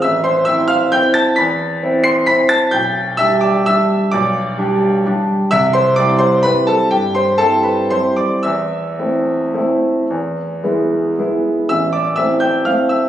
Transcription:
0.02 A1 E5 E6
0.24 C5 C6
0.45 C4 E4 E5 E6
0.68 F5 F6
0.92 C4 E4 G5 G6
1.14 A5 A6
1.36 E2 B5 B6
1.83 C4 E4
2.04 C6 C7
2.26 C4 E4 B5 B6
2.49 A5 A6
2.71 B1 G5 G6
3.17 G3 D4 G4 E5 E6
3.41 D5 D6
3.66 G3 D4 G4 E5 E6
4.12 B1 D5 D6
4.58 G3 D4 G4
5.06 G3 D4 G4
5.51 C2 E5 E6
5.73 C5 C6
5.96 G3 C4 E4 D5 D6
6.19 C5 C6
6.43 G3 C4 E4 B4 B5
6.67 A4 A5
6.91 G2 G4 G5
7.15 C5 C6
7.38 G3 C4 E4 A4 A5
7.63 B4 B5
7.90 G3 C4 E4 C5 C6
8.16 D5 D6
8.43 E2 E5 E6
8.99 A3 C4 E4
9.54 A3 C4 E4
10.10 E2
10.63 G#3 B3 E4
11.18 G#3 B3 E4
11.69 A1 E5 E6
11.93 D5 D6
12.16 A3 C4 E4 E5 E6
12.40 G5 G6
12.65 A3 C4 E4 F5 F6
12.89 E5 E6

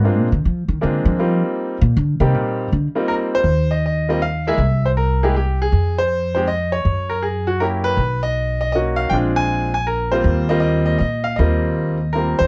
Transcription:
0.04 G2 G#3 A#3 C4 D4 F4
0.19 A#2
0.32 D3
0.45 F3
0.68 D#3
0.81 D3 G#3 A#3 C4 D4 F4
1.05 F3
1.19 G3 A#3 C4 D#4 F4
1.81 A#2
1.97 D3
2.20 C3 G3 A#3 C4 D#4 G4
2.34 A#2
2.72 D3
2.95 G3 A#3 C4 D#4 F4
3.08 A#4
3.35 C5
3.44 D#2
3.71 D#5
3.86 D#5
4.09 G3 A#3 C4 F4 D#5
4.22 F5
4.47 G#3 A#3 E4 G#4 E5
4.58 C2
4.86 C5
4.97 A#4
5.23 G#3 A#3 E4 G4 G#4
5.36 G4
5.62 G#4
5.72 F2
5.98 C5
6.35 G#3 C4 D#4 G4 C5
6.48 D#5
6.72 C#5
6.85 F#2
7.10 A#4
7.22 G#4
7.47 F#4
7.60 A#3 C#4 E4 G4 A#4
7.84 B4
7.97 B1
8.23 D#5
8.61 D#5
8.72 A#3 C#4 D#4 F#4 D#5
8.96 F5
9.10 A#1 G#3 C4 D4 F4 G5
9.36 G#5
9.74 G#5
9.87 A#4
10.12 G3 A#3 C4 F4 C5
10.24 D#2
10.49 G3 A#3 C4 F4 D#5
10.60 D#5
10.86 D#5
10.99 A#2 D#5
11.24 F5
11.36 D#2 G3 A#3 C4 F4 D#5
12.13 G3 A#3 C4 F4 A#4
12.39 E2 C5

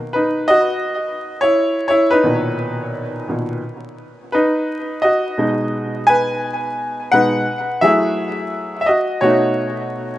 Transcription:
0.13 D#4 B4
0.48 F#4 D#5
1.41 E4 C#5
1.88 E4 C#5
2.11 D#4 B4
2.23 A#2 B2 D#3
3.28 A#2 B2 D#3
4.32 D#4 B4
5.02 F#4 D#5
5.38 B2 G#3 D#4
6.07 B4 G#5
7.12 B2 G#3 D#4 B4 F#5
7.81 F#3 A3 E4 G#4 E5
8.81 E5
8.86 F#4 D#5
9.21 B2 A3 D#4 F#4 C#5

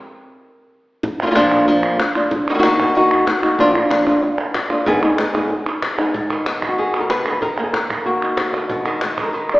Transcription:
Already playing: A#4
1.03 muted nylon-string guitar stroke, cajon bass
1.20 F3 A#3 D4 F4, cajon slap
1.26 F3 A#3 D4 F4
1.31 F3 A#3 D4 F4
1.35 A#2 F3 A#3 D4 F4, cajon slap, clap
1.51 cajon bass, clap
1.67 A#2 F3 A#3 D4 F4
1.99 muted nylon-string guitar stroke, cajon slap, clap
2.15 A#3 D4 F4, cajon slap, clap
2.31 muted nylon-string guitar stroke, cajon bass
2.50 D#3 A#3 D#4 F#4
2.54 D#3 A#3 D#4 F#4
2.58 D#3 A#3 D#4 F#4
2.63 D#3 A#3 D#4 F#4, cajon slap, clap
2.79 cajon bass, clap
2.95 D#3 A#3 D#4 F#4
3.11 clap
3.26 muted nylon-string guitar stroke, cajon slap, clap
3.42 A#3 D#4 F#4, cajon slap, clap
3.58 A#2 F3 A#3 D4 F4, cajon bass
3.74 A#3 D4 F4, clap
3.89 F3 A#3 D4 F4, cajon slap, clap
4.06 A#3 D4 F4, cajon bass, clap
4.22 muted nylon-string guitar stroke
4.38 clap
4.54 cajon slap, clap
4.70 A#3 D4 F4, clap
4.86 G#2 D#3 G#3 B3 D#4 G#4, cajon bass
5.02 G#3 B3 D#4 G#4, cajon slap, clap
5.17 G#3 B3 D#4 G#4, cajon slap, clap
5.34 G#3 B3 D#4 G#4, cajon bass, clap
5.49 muted nylon-string guitar stroke
5.66 clap
5.82 cajon slap, clap
5.98 G#3 B3 D#4 G#4, clap
6.14 G#2, cajon bass
6.30 D#3
6.46 B3, cajon slap, clap
6.62 cajon bass, clap
6.69 F#4
6.78 D#3 G#4
7.00 A#4
7.10 B2 B4, cajon slap, clap
7.26 D3, cajon slap, clap
7.31 B4
7.42 D#3 A#4, cajon bass
7.58 A#3, cajon slap, clap
7.63 G#4
7.73 A#4, cajon slap, clap
7.90 cajon bass, clap
8.06 A#3 F#4, cajon slap
8.23 D#4
8.37 D#3, cajon slap, clap
8.54 D3, cajon slap, clap
8.70 B2 D#3 G#3 F#4, cajon bass
8.85 D#3, cajon slap, clap
9.01 G#3, cajon slap, clap
9.18 G#3, cajon bass, clap
9.23 A#4
9.33 D#3 B4, cajon slap
9.49 clap
9.54 D5

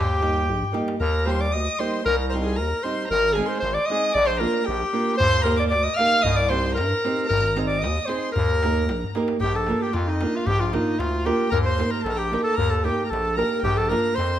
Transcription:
Already playing: D#2
0.00 G4 G5
0.20 G3 A#3 D#4 G4, darbuka tek
0.49 A#1, darbuka dum
0.62 darbuka dum
0.72 G3 A#3 D#4 G4, darbuka tek
0.88 darbuka tek
1.00 D#2 A#4 A#5
1.26 G3 A#3 D#4 G4 C5 C6
1.40 D5 D6
1.52 D2 D#5 D#6
1.78 G3 A#3 D#4 G4 C5 C6
2.05 C2 A#4 A#5
2.29 G3 C4 C5 A#5 C6
2.35 D#4 G4
2.43 G#4 G#5
2.56 D#2 A#4 A#5
2.83 G3 C4 D#4 G4 C5 C6
3.08 G#1 A#4 A#5
3.33 G#3 G#4 G#5
3.38 C4 D#4 G#4
3.46 C5 C6
3.58 C5 C6
3.63 G#1
3.74 D5 D6
3.85 D#5 D#6
3.90 G#3 C4 D#4 G#4
4.12 A#1 D5 D6
4.25 C5 C6
4.37 A#3 D4 F4 A#4 A#5
4.41 A#4
4.64 G4 G5
4.68 A#1
4.93 A#3 D4 F4 A#4
5.16 C5 C6, darbuka dum
5.21 D#2
5.42 A#3 D#4 A#4 A#5
5.46 G4, darbuka tek
5.57 D5 D6, darbuka tek
5.69 D2 D5 D6, darbuka tek
5.83 D#5 D#6
5.94 F5 F6
5.99 A#3 D#4 G4 A#4, darbuka tek
6.12 darbuka tek
6.21 C2 D#5 D#6
6.25 darbuka dum
6.36 D5 D6
6.48 C4 D#4 G4 C5 C6, darbuka tek
6.65 darbuka tek
6.75 G2 A#4 A#5, darbuka tek
7.04 C4 D#4 G4 C5, darbuka tek
7.18 darbuka tek
7.27 A#4 A#5, darbuka dum
7.31 G#1
7.56 C4 D#4 G#4 C5, darbuka tek
7.67 D5 D6, darbuka tek
7.79 D#5 D#6
7.83 D#2, darbuka tek
8.06 C4 D#4 G#4 C5 C6, darbuka tek
8.23 darbuka tek
8.32 A#4 A#5, darbuka dum
8.37 D#2
8.49 darbuka tek
8.63 A#3 D#4 G4 A#4, darbuka tek
8.76 darbuka tek
8.89 A#1, darbuka tek
9.04 darbuka dum
9.15 A#3 D#4 G4 A#4, darbuka tek
9.28 darbuka tek
9.40 A#1 G4 G5, darbuka dum
9.55 A4 A5
9.67 A#3 D4 F4 A#4, darbuka tek
9.81 G4 G5
9.93 F2 F4 F5, darbuka tek
10.08 D#4 D#5
10.21 A#3 D4 F4 A#4, darbuka tek
10.35 F4 F5
10.47 A#1 G4 G5, darbuka dum
10.60 F4 F5, darbuka tek
10.72 A#3 D4 D#4 F4 A#4 D#5, darbuka tek
10.98 D2 F4 F5, darbuka tek
11.25 A#3 D4 F4 G4 A#4 G5, darbuka tek
11.50 D#2 A#4 A#5, darbuka dum
11.64 C5 C6, darbuka tek
11.78 A#3 D#4 G4 A#4, darbuka tek
11.90 A#4 A#5
12.03 A#1 A4 A5, darbuka tek
12.09 A4 A#4 A5 A#5
12.16 G4 G5
12.31 A#3 D#4 G4 A#4, darbuka tek
12.43 A4 A5
12.54 D#2 A#4 A#5
12.59 darbuka dum
12.69 A4 A5
12.83 A#3 D#4 G4 A#4 G5
13.00 A#5, darbuka tek
13.06 A#4 A5
13.10 A#1 A4, darbuka tek
13.27 darbuka tek
13.36 A#3 D#4 G4 A#4 A#5, darbuka tek
13.54 darbuka tek
13.62 A#1 G4 G5, darbuka dum
13.76 A4 A5
13.89 A#3 D4 F4 A#4 A#5, darbuka tek
14.15 F2 C5 C6
14.19 darbuka tek

